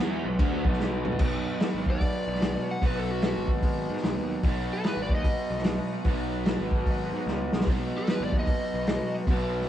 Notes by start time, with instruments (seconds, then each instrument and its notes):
Already playing: tonewheel organ B3 F#4 D#5
0.00 picked electric bass E2, overdriven electric guitar E3 B3 E4
0.25 picked electric bass B1, overdriven electric guitar B2 F#3
0.39 picked electric bass D2, overdriven electric guitar D3 A3 D4, kick, crash
0.65 picked electric bass B1, overdriven electric guitar B2 F#3 B3, kick
0.73 snare
0.80 snare
1.05 mid tom
1.12 floor tom
1.19 picked electric bass B1, overdriven electric guitar B2 F#3, tonewheel organ B3 D#4 F#4, kick, crash
1.25 overdriven electric guitar B3
1.60 snare, open hi-hat
1.75 picked electric bass G#1
1.86 picked electric bass D#2, electric slide guitar D5, kick
2.01 kick, open hi-hat
2.28 picked electric bass B1
2.35 snare
2.42 picked electric bass B1, snare, open hi-hat
2.56 picked electric bass B2
2.71 electric slide guitar F#5
2.82 picked electric bass B1, overdriven electric guitar B2 F#3 B3, electric slide guitar B4, kick, open hi-hat
2.99 electric slide guitar A4
3.11 electric slide guitar F#4
3.22 snare, open hi-hat
3.26 electric slide guitar F#4
3.35 picked electric bass G#1
3.48 picked electric bass G#1, kick
3.63 kick, open hi-hat
3.90 picked electric bass G#2
3.97 snare
4.03 picked electric bass B1, snare, open hi-hat
4.16 picked electric bass D#2
4.43 picked electric bass B1, overdriven electric guitar B2 F#3, tonewheel organ F#4 B4 D#5, kick, open hi-hat
4.48 overdriven electric guitar B3
4.73 electric slide guitar A4
4.84 electric slide guitar B4, snare, open hi-hat
4.97 picked electric bass G#1
5.02 electric slide guitar D5
5.09 picked electric bass D#2, kick
5.15 electric slide guitar D#5
5.24 kick, open hi-hat
5.51 picked electric bass B1
5.58 snare
5.64 picked electric bass B1, snare, open hi-hat
5.79 picked electric bass B2
6.04 picked electric bass B1, overdriven electric guitar B2 F#3, kick, open hi-hat
6.09 overdriven electric guitar B3
6.45 snare, open hi-hat
6.60 picked electric bass G#1
6.71 picked electric bass G#1, kick
6.86 kick, open hi-hat
7.12 picked electric bass G#2
7.27 picked electric bass C#2, snare
7.53 picked electric bass B1, snare
7.61 snare
7.66 picked electric bass B1, overdriven electric guitar B2 F#3, tonewheel organ C4 G4 E5, kick, open hi-hat
7.70 overdriven electric guitar B3
7.80 tonewheel organ B3 D#4 F#4
7.98 electric slide guitar A4
8.07 electric slide guitar B4, snare, open hi-hat
8.21 picked electric bass G#1, electric slide guitar D5
8.32 picked electric bass D#2, kick
8.39 electric slide guitar D#5
8.47 kick, open hi-hat
8.74 picked electric bass B1
8.87 picked electric bass B1, snare, open hi-hat
9.00 picked electric bass B2
9.27 picked electric bass B1, overdriven electric guitar B2 F#3, kick, open hi-hat
9.32 overdriven electric guitar B3
9.61 snare